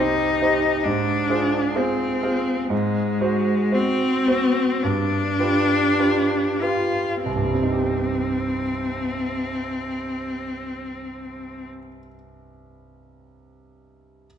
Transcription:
Already playing: grand piano C2 D#4 G4, cello D#4
0.00 grand piano C5
0.42 grand piano D#4 G4 C5
0.84 grand piano G#2, cello D4
1.30 grand piano F4 G#4 C5
1.75 cello C4, grand piano F4 G#4 C5
2.22 grand piano F4 G#4 C5
2.70 grand piano G#2, cello G#3
3.21 grand piano F#4 C5
3.72 cello C4, grand piano F#4 C5
4.27 grand piano F#4 C5
4.83 grand piano G2, cello D4
5.39 grand piano F4 G4 B4
5.99 grand piano F4 G4 B4
6.61 cello F4, grand piano F4 G4 B4
7.24 grand piano C2, cello C4
7.36 grand piano G2
7.44 grand piano G3
7.54 grand piano C4
7.63 grand piano D#4
7.72 grand piano G4

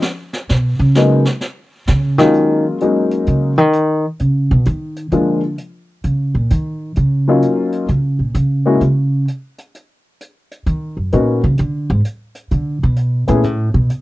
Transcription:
0.02 snare
0.33 snare
0.49 upright bass B2, brush sweep, snare
0.79 upright bass C#3
0.95 upright piano F#3 G#3 A#3 B3 D#4, snare
1.25 snare
1.41 brush sweep, snare
1.87 upright bass C#3, snare
2.18 upright bass D#3, upright piano F#3 G#3 A#3 C#4 F4, snare
2.33 closed hi-hat
2.80 upright piano F#3 G#3 A#3 C#4 D#4, closed hi-hat
3.11 closed hi-hat
3.26 upright bass C#3, closed hi-hat
3.58 upright bass D#3
3.73 closed hi-hat
4.19 upright bass C#3, closed hi-hat
4.51 upright bass B2
4.65 upright bass D#3, closed hi-hat
4.96 closed hi-hat
5.12 upright bass D3, upright piano F3 G#3 A#3 D4 F4, closed hi-hat
5.58 closed hi-hat
6.04 upright bass C#3, closed hi-hat
6.35 upright bass A#2
6.50 upright bass D#3, closed hi-hat
6.96 upright bass C#3, closed hi-hat
7.28 upright piano F#3 A#3 C#4 D#4 F4
7.42 closed hi-hat
7.72 closed hi-hat
7.88 upright bass C#3, closed hi-hat
8.19 upright bass A#2
8.35 upright bass C#3, closed hi-hat
8.66 upright piano G#3 A#3 C#4 E4 F#4
8.81 upright bass C#3, closed hi-hat
9.28 closed hi-hat
9.58 closed hi-hat
9.75 closed hi-hat
10.21 closed hi-hat
10.51 closed hi-hat
10.66 upright bass D#3, closed hi-hat
10.97 upright bass F#2
11.12 upright bass A#2, upright piano A#3 B3 C#4 D#4 F#4, closed hi-hat
11.44 upright bass C#3
11.58 upright bass D3, closed hi-hat
11.90 upright bass G#2
12.05 closed hi-hat
12.35 closed hi-hat
12.51 upright bass D3, closed hi-hat
12.83 upright bass B2
12.96 closed hi-hat
13.28 upright bass A#2, upright piano A3 B3 C#4 E4 G#4, closed hi-hat
13.43 upright bass A2, closed hi-hat
13.74 upright bass B2
13.90 closed hi-hat

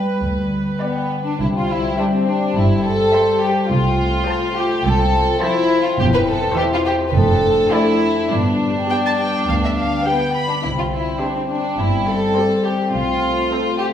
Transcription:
Already playing: harp G2 B3 G4 B4, cello section G3, viola section B4
0.23 double bass section D2, harp D3
0.53 harp B3
0.80 violin section B3 G4 B4 D5, harp G4
1.11 harp B4
1.25 violin section D4
1.39 cello section C2, double bass section C2, harp C3, french horn section G3 G4, violin section E4
1.58 harp C4, violin section F4
1.70 violin section E4
1.79 harp G3
1.98 viola section G3 C5, violin section D4 E5, harp C5
2.13 violin section C4
2.18 harp G4
2.29 violin section D4
2.37 harp C4
2.55 double bass section G1, cello section G2, harp G3, violin section E4
2.75 harp C4
2.84 violin section A4
2.94 harp G3
3.13 viola section G3 C5, harp C5, violin section E5
3.33 harp G4
3.42 violin section G4
3.52 harp C4
3.70 cello section C2, double bass section C2, harp C3, french horn section A3 F4, violin section F4
3.90 harp C4
4.09 harp F4
4.27 viola section F3 C5, harp C5, violin section A5
4.46 harp A4
4.56 violin section G4
4.65 harp C4
4.85 cello section C2, double bass section C2, harp C3, french horn section C4, violin section A4
5.05 harp C4
5.24 harp F4
5.42 viola section F3 C5, violin section E4 A5, harp C5
5.62 harp A4
5.85 violin section F4
5.99 double bass section E1, cello section E2, harp E2, french horn section E4, violin section G4
6.14 violin section B4
6.19 harp C4
6.29 violin section A4
6.38 harp E4
6.56 viola section E3 C5, violin section G4 E5, harp C5
6.74 violin section F4, harp E5
6.86 violin section G4
6.96 harp C4
7.08 violin section B4
7.14 double bass section F1, harp F2, cello section F2, french horn section A3 D4, violin section A4
7.34 harp A3
7.72 viola section A3 A4, violin section E4 D5
7.92 harp A4
8.12 harp A3
8.30 double bass section G1, harp G2, cello section G2, french horn section G3 B3, violin section D4
8.50 harp B3
8.70 harp G4
8.89 viola section B3 G4, harp B4, violin section G5
9.05 harp D5, violin section A5
9.20 violin section G5
9.29 harp B3
9.48 double bass section D2, cello section D2, harp D3, violin section F5
9.64 harp B3, violin section E5
9.78 violin section F5
9.87 harp G4
10.06 viola section B3 G4, violin section B3 G5, harp B4
10.26 harp D5
10.36 violin section B5
10.45 harp B3, violin section D4
10.63 double bass section C2, cello section C3, harp C3, french horn section G3 C4, violin section E4
10.79 violin section F4
10.84 harp C4
10.94 violin section E4
11.03 harp G4
11.21 viola section C4 G4, violin section D4 C5, harp C5
11.36 violin section C4
11.41 harp G4
11.49 violin section D4
11.61 harp C4
11.79 double bass section G1, cello section G2, harp G3, violin section E4
11.99 harp C4
12.07 violin section A4
12.17 harp G4
12.36 viola section C4 G4, violin section C5, harp C5
12.56 harp G4
12.65 violin section G4
12.76 harp C4
12.92 double bass section C2, harp C3, cello section C3, french horn section A3, violin section F4
13.13 harp C4
13.33 harp A4
13.51 viola section C4 A4, harp C5, violin section C5
13.71 harp A4
13.79 violin section G4
13.90 harp C4

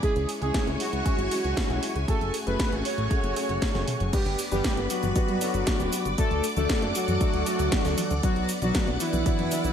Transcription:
0.03 grand piano G#3 C#4 E4 G#4, string machine E4 C#5 G#5 C#6, analog polysynth G#4, kick, closed hi-hat
0.16 analog synth bass C#2, closed hi-hat
0.29 open hi-hat
0.41 analog synth bass C#2, grand piano G#3 C#4 E4 G#4, analog polysynth G#4, closed hi-hat
0.54 kick, snare, closed hi-hat
0.67 analog synth bass C#2, grand piano G#3 C#4 E4 G#4, closed hi-hat
0.80 analog polysynth F#4, open hi-hat
0.93 analog synth bass C#2, closed hi-hat
1.06 grand piano G#3 C#4 E4 G#4, kick, closed hi-hat
1.18 analog synth bass G#1, closed hi-hat
1.31 grand piano G#3 C#4 E4 F#4, open hi-hat
1.44 analog synth bass C#2, closed hi-hat
1.57 kick, snare, closed hi-hat
1.70 analog synth bass B1, grand piano G#3 C#4 E4 G#4, closed hi-hat
1.83 open hi-hat
1.95 analog synth bass C#2, closed hi-hat
2.08 grand piano A3 C#4 F#4 G#4, string machine A3 F#4 C#6, analog polysynth A4, kick, closed hi-hat
2.21 analog synth bass F#1, closed hi-hat
2.34 open hi-hat
2.46 analog synth bass F#1, grand piano A3 C#4 F#4 G#4, analog polysynth B4, closed hi-hat
2.59 kick, snare, closed hi-hat
2.72 analog synth bass A1, grand piano A3 C#4 F#4 G#4, closed hi-hat
2.85 analog polysynth C#5, open hi-hat
2.98 analog synth bass A1, closed hi-hat
3.11 grand piano A3 C#4 F#4 G#4, kick, closed hi-hat
3.23 analog synth bass F#1, closed hi-hat
3.36 grand piano A3 C#4 F#4 G#4, open hi-hat
3.49 analog synth bass F#1, closed hi-hat
3.62 kick, snare, closed hi-hat
3.75 analog synth bass F#1, grand piano A3 C#4 F#4 G#4, snare, closed hi-hat, high tom
3.88 open hi-hat, mid tom
4.00 analog synth bass F#1, closed hi-hat, mid tom
4.13 analog polysynth G3 G4, grand piano B3 D4 G4 B4, string machine B4 D5 B5 D6, kick, closed hi-hat, crash, cabasa
4.26 analog synth bass G1, closed hi-hat
4.39 open hi-hat, cabasa
4.51 analog synth bass G1, analog polysynth G3 G4, grand piano B3 D4 G4 B4, closed hi-hat, high tom, cabasa
4.64 kick, snare, closed hi-hat, cabasa
4.77 analog synth bass G1, grand piano B3 D4 G4 B4, closed hi-hat
4.90 analog polysynth F#3 F#4, open hi-hat, cabasa
5.03 analog synth bass G1, closed hi-hat, high tom, cabasa
5.16 grand piano B3 D4 G4 B4, kick, closed hi-hat, cabasa
5.28 analog synth bass G2, closed hi-hat
5.41 grand piano B3 D4 A4 B4, open hi-hat, cabasa
5.54 analog synth bass G1, closed hi-hat, cabasa
5.67 kick, snare, closed hi-hat, cabasa
5.80 analog synth bass D1, grand piano B3 D4 G4 B4, closed hi-hat, cabasa
5.93 open hi-hat, cabasa
6.05 analog synth bass G1, closed hi-hat, cabasa
6.18 grand piano A3 D4 F#4 A4, analog polysynth A3 A4, string machine A4 F#5, kick, closed hi-hat, cabasa
6.31 analog synth bass D2, closed hi-hat
6.44 open hi-hat, cabasa
6.57 analog synth bass D2, grand piano A3 D4 F#4 A4, analog polysynth A3 A4, closed hi-hat, high tom, cabasa
6.69 kick, snare, closed hi-hat, cabasa
6.82 analog synth bass F#2, grand piano A3 D4 F#4 A4, closed hi-hat
6.95 analog polysynth F#3 F#4, open hi-hat, cabasa
7.08 analog synth bass F#2, closed hi-hat, high tom, cabasa
7.21 grand piano A3 D4 F#4 A4, kick, closed hi-hat, cabasa
7.34 analog synth bass D2, closed hi-hat
7.46 grand piano A3 D4 F#4 A4, open hi-hat, cabasa
7.59 analog synth bass D2, closed hi-hat, cabasa
7.72 kick, snare, closed hi-hat, cabasa
7.85 analog synth bass D2, grand piano A3 D4 F#4 A4, snare, closed hi-hat, cabasa
7.98 open hi-hat, high tom, cabasa
8.11 analog synth bass D2, closed hi-hat, cabasa
8.23 grand piano F#3 B3 D4 F#4, analog polysynth F#3 F#4, string machine B4 F#5, kick, closed hi-hat, cabasa
8.36 analog synth bass B1, closed hi-hat
8.49 open hi-hat, cabasa
8.62 analog synth bass B1, grand piano F#3 B3 D4 F#4, analog polysynth F#3 F#4, closed hi-hat, high tom, cabasa
8.75 kick, snare, closed hi-hat, cabasa
8.87 analog synth bass B1, grand piano F#3 B3 D4 F#4, closed hi-hat
9.00 analog polysynth E3 E4, open hi-hat, cabasa
9.13 analog synth bass B1, closed hi-hat, high tom, cabasa
9.26 grand piano F#3 B3 D4 F#4, kick, closed hi-hat, cabasa
9.39 analog synth bass F#1, closed hi-hat
9.51 grand piano F#3 B3 D4 E4, open hi-hat, cabasa
9.64 analog synth bass B1, closed hi-hat, cabasa

